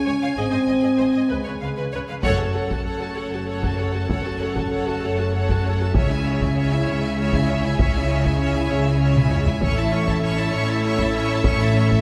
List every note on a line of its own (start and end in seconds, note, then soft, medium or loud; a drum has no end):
0.00 0.35 C#4 medium
0.00 2.04 G#5 medium
0.06 0.12 C#2 soft
0.06 0.13 C#2 soft
0.06 0.13 C#5 soft
0.06 0.14 C#5 soft
0.22 0.28 C#2 soft
0.22 0.29 C#5 soft
0.22 0.28 F5 soft
0.37 0.43 G#1 medium
0.37 0.43 G#2 medium
0.37 1.29 C4 medium
0.37 0.43 G#4 medium
0.37 0.44 D#5 medium
0.52 0.59 G#2 soft
0.52 0.59 C5 soft
0.52 0.59 D#5 soft
0.68 0.74 G#1 soft
0.68 0.74 G#2 soft
0.68 0.74 D#5 soft
0.68 0.75 D#5 soft
0.81 0.90 G#2 medium
0.81 0.88 G#4 medium
0.81 0.90 D#5 soft
0.98 1.05 G#1 soft
0.98 1.06 G#2 soft
0.98 1.05 C5 soft
0.98 1.07 D#5 soft
1.13 1.22 G#2 soft
1.13 1.19 D#5 soft
1.13 1.22 D#5 soft
1.29 1.37 C#2 medium
1.29 1.37 C#3 medium
1.29 2.07 G#3 medium
1.29 1.35 B4 soft
1.29 1.37 B4 soft
1.44 1.53 C#3 soft
1.44 1.53 B4 soft
1.44 1.51 C#5 soft
1.61 1.68 C#2 soft
1.61 1.69 C#3 soft
1.61 1.69 B4 soft
1.61 1.68 F5 soft
1.77 1.85 C#3 medium
1.77 1.84 B4 medium
1.77 1.85 B4 medium
1.93 1.99 C#2 soft
1.93 2.00 C#3 soft
1.93 2.01 B4 soft
1.93 1.99 C#5 soft
2.08 2.16 C#3 soft
2.08 2.16 B4 soft
2.08 2.15 F5 soft
2.23 3.04 F#1 medium
2.23 3.04 F#2 medium
2.23 5.90 A3 medium
2.23 5.90 C#4 medium
2.23 5.90 A4 medium
2.23 2.39 A4 medium
2.23 2.38 C#5 medium
2.23 5.90 C#5 medium
2.23 2.38 F#5 medium
2.23 5.90 F#5 medium
2.23 taiko medium
2.38 2.56 F#4 soft
2.38 2.55 A4 soft
2.38 2.55 A5 soft
2.54 2.72 A4 soft
2.54 2.70 C#5 soft
2.54 2.70 F#5 soft
2.68 2.87 F#4 soft
2.68 2.85 A4 soft
2.68 2.87 A5 soft
2.68 taiko medium
2.84 3.01 A4 soft
2.84 3.00 C#5 soft
2.84 3.00 F#5 soft
2.99 3.18 F#4 soft
2.99 3.16 A4 soft
2.99 3.17 A5 soft
3.15 3.99 F#1 medium
3.15 3.99 F#2 soft
3.15 3.33 A4 soft
3.15 3.32 C#5 soft
3.15 3.33 F#5 soft
3.32 3.49 F#4 soft
3.32 3.48 A4 soft
3.32 3.49 A5 soft
3.48 3.63 A4 soft
3.48 3.62 C#5 soft
3.48 3.63 F#5 soft
3.62 3.79 F#4 soft
3.62 3.79 A4 soft
3.62 3.80 A5 soft
3.62 taiko medium
3.78 3.95 A4 soft
3.78 3.94 C#5 soft
3.78 3.94 F#5 soft
3.93 4.10 F#4 soft
3.93 4.09 A4 soft
3.93 4.11 A5 soft
4.08 4.91 F#1 medium
4.08 4.92 F#2 medium
4.08 4.24 A4 soft
4.08 4.24 C#5 soft
4.08 4.25 F#5 soft
4.08 taiko medium
4.25 4.41 F#4 soft
4.25 4.41 A4 soft
4.25 4.41 A5 soft
4.40 4.57 A4 soft
4.40 4.56 C#5 soft
4.40 4.56 F#5 soft
4.55 4.72 F#4 soft
4.55 4.71 A4 soft
4.55 4.73 A5 soft
4.55 taiko medium
4.71 4.87 A4 soft
4.71 4.86 C#5 soft
4.71 4.86 F#5 soft
4.85 5.03 F#4 soft
4.85 5.02 A4 soft
4.89 5.04 A5 soft
5.01 5.84 F#1 medium
5.01 5.84 F#2 medium
5.01 5.19 A4 soft
5.01 5.17 C#5 soft
5.01 5.18 F#5 soft
5.17 5.35 F#4 soft
5.17 5.33 A4 soft
5.17 5.35 A5 soft
5.33 5.49 A4 soft
5.33 5.48 C#5 soft
5.33 5.49 F#5 soft
5.48 5.65 F#4 soft
5.48 5.64 A4 soft
5.48 5.65 A5 soft
5.48 taiko medium
5.64 5.81 A4 soft
5.64 5.79 C#5 soft
5.64 5.80 F#5 soft
5.79 5.96 F#4 soft
5.79 5.94 A4 soft
5.79 5.95 A5 soft
5.93 6.76 C#2 medium
5.93 6.76 C#3 medium
5.93 9.46 G#3 medium
5.93 9.58 C#4 medium
5.93 6.10 C#4 medium
5.93 9.46 E4 medium
5.93 9.62 G#4 medium
5.93 9.58 C#5 medium
5.93 6.10 C#5 medium
5.93 6.09 E5 medium
5.93 9.61 E5 medium
5.93 taiko medium
6.10 6.26 E4 soft
6.10 6.26 E5 medium
6.10 6.25 G#5 soft
6.26 6.42 C#4 soft
6.26 6.41 C#5 soft
6.26 6.42 E5 soft
6.41 6.58 E4 soft
6.41 6.57 E5 soft
6.41 6.57 G#5 soft
6.41 taiko medium
6.58 6.71 C#4 soft
6.58 6.71 C#5 medium
6.58 6.71 E5 soft
6.71 6.88 E4 soft
6.71 6.87 E5 soft
6.71 6.87 G#5 soft
6.86 7.67 C#2 medium
6.86 7.68 C#3 medium
6.86 7.03 C#4 soft
6.86 7.02 C#5 soft
6.86 7.03 E5 medium
7.03 7.19 E4 soft
7.03 7.18 E5 soft
7.03 7.19 G#5 soft
7.18 7.33 C#4 soft
7.18 7.32 C#5 soft
7.18 7.33 E5 soft
7.32 7.49 E4 soft
7.32 7.49 E5 medium
7.32 7.49 G#5 medium
7.32 taiko medium
7.49 7.64 C#4 soft
7.49 7.64 C#5 soft
7.49 7.64 E5 medium
7.64 7.79 E4 medium
7.64 7.79 E5 medium
7.64 7.79 G#5 medium
7.79 8.60 C#2 medium
7.79 8.60 C#3 medium
7.79 7.94 C#4 medium
7.79 7.93 C#5 medium
7.79 7.93 E5 medium
7.79 taiko medium
7.94 8.10 E4 medium
7.94 8.10 E5 medium
7.94 8.09 G#5 soft
8.09 8.25 C#4 medium
8.09 8.25 C#5 medium
8.09 8.26 E5 medium
8.24 8.40 E4 medium
8.24 8.40 E5 medium
8.24 8.40 G#5 medium
8.24 taiko medium
8.38 8.54 C#4 medium
8.38 8.53 C#5 medium
8.42 8.55 E5 medium
8.53 8.70 E4 medium
8.53 8.70 E5 medium
8.53 8.71 G#5 medium
8.69 9.51 C#2 medium
8.69 9.51 C#3 medium
8.69 8.86 C#4 medium
8.69 8.85 C#5 medium
8.69 8.87 E5 medium
8.84 9.00 E4 medium
8.84 9.00 E5 soft
8.89 9.02 G#5 medium
8.99 9.15 C#4 medium
8.99 9.14 C#5 medium
9.04 9.16 E5 medium
9.16 9.31 E4 medium
9.16 9.32 E5 medium
9.16 9.32 G#5 medium
9.16 taiko mid medium
9.31 9.47 C#4 medium
9.31 9.47 C#5 medium
9.31 taiko low-mid medium
9.35 9.48 E5 medium
9.46 9.61 E4 medium
9.46 9.62 E5 medium
9.46 9.63 G#5 medium
9.46 taiko low medium
9.61 10.42 A1 medium
9.61 10.42 A2 medium
9.61 12.01 A3 medium
9.61 9.76 C#4 medium
9.61 12.01 C#4 medium
9.61 12.01 E4 medium
9.61 12.01 A4 medium
9.61 12.01 C#5 medium
9.61 9.76 C#5 medium
9.61 12.01 E5 medium
9.61 taiko medium
9.65 9.78 C#6 medium
9.77 9.92 E4 medium
9.77 9.92 E5 medium
9.77 9.93 A5 medium
9.92 10.07 C#4 medium
9.92 10.08 C#5 medium
9.92 10.09 C#6 medium
10.05 10.22 E4 medium
10.05 10.23 E5 medium
10.05 taiko medium
10.10 10.24 A5 medium
10.22 10.36 C#4 medium
10.22 10.36 C#5 medium
10.22 10.37 C#6 medium
10.36 10.52 E4 medium
10.36 10.54 E5 medium
10.40 10.54 A5 medium
10.51 11.34 A1 medium
10.51 11.33 A2 medium
10.51 10.67 C#4 medium
10.51 10.68 C#5 medium
10.55 10.69 C#6 medium
10.68 10.83 E4 medium
10.68 10.84 E5 medium
10.68 10.85 A5 medium
10.83 10.98 C#4 medium
10.83 10.97 C#5 medium
10.88 11.00 C#6 medium
10.98 11.14 E4 medium
10.98 11.15 E5 medium
10.98 taiko medium
11.03 11.16 A5 medium
11.13 11.29 C#4 medium
11.13 11.30 C#5 medium
11.18 11.31 C#6 medium
11.29 11.44 E4 medium
11.29 11.45 E5 medium
11.29 11.45 A5 medium
11.43 12.01 A1 medium
11.43 12.01 A2 medium
11.43 11.58 C#4 medium
11.43 11.59 C#5 medium
11.43 11.59 C#6 medium
11.43 taiko medium
11.60 11.75 E4 medium
11.60 11.75 E5 medium
11.60 11.76 A5 medium
11.75 11.91 C#4 medium
11.75 11.91 C#5 medium
11.75 11.92 C#6 soft
11.89 12.01 E4 medium
11.89 12.01 E5 medium
11.89 12.01 A5 medium
11.89 taiko medium